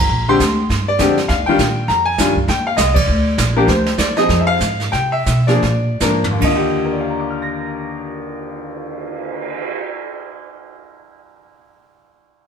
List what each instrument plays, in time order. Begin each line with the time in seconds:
0.00 upright piano A#5
0.09 upright bass A#1, brush sweep
0.29 upright piano D3 G#3 C4 G4 C6
0.39 upright bass D2, kick, snare, hi-hat pedal
0.69 upright bass G2, brush sweep, kick, snare
0.88 upright piano D5
0.99 upright bass F2, upright piano D3 G#3 C4 G4, kick, snare, hi-hat pedal
1.18 snare
1.28 upright bass D#2, upright piano F5, brush sweep, kick, snare
1.46 upright piano D#3 G3 D4 F4 G5, muted upright bass stroke
1.58 upright bass A#2, kick, snare, hi-hat pedal
1.88 upright bass F2, upright piano A#5, brush sweep, kick, snare
2.05 upright piano G#5
2.18 upright bass G2, upright piano D#3 G3 D4 F4, kick, snare, hi-hat pedal
2.36 kick
2.48 upright bass D#2, upright piano G5, brush sweep, kick, snare
2.67 upright piano F5
2.77 upright bass C2, upright piano D#5, kick, snare, hi-hat pedal
2.94 upright piano D5, kick, crash
3.08 upright bass D2, brush sweep
3.38 upright bass A#1, kick, snare, hi-hat pedal
3.56 upright piano F3 A#3 D4 G4 A#4
3.67 upright bass D2, upright piano C5, brush sweep, kick, snare
3.86 snare
3.98 upright bass D#2, upright piano D5, kick, snare, hi-hat pedal
4.17 upright piano F3 C4 D#4 G#4 D#5, snare
4.29 upright bass F2, brush sweep, kick, snare
4.40 upright piano E5
4.47 upright piano F5
4.60 upright bass G#2, kick, snare, hi-hat pedal
4.80 snare
4.92 upright bass C3, upright piano G5, brush sweep, kick, snare
5.12 upright piano E5
5.26 upright bass B2, kick, snare, hi-hat pedal
5.47 upright piano F3 A#3 D4 G#4 D5, snare
5.62 upright bass A#2, snare
6.00 upright bass G#2, upright piano F3 A#3 D4 A#4, snare, hi-hat pedal
6.24 floor tom
6.31 upright piano D#2
6.39 upright bass D#2, upright piano D3, kick, crash
6.44 upright piano F4 D#5
6.56 upright piano G4
6.67 cymbal swell
6.85 upright piano A#4
6.93 upright piano D5
7.01 upright piano F5
7.10 upright piano A#5
7.20 upright piano D6
7.30 upright piano F6
7.42 upright piano A#6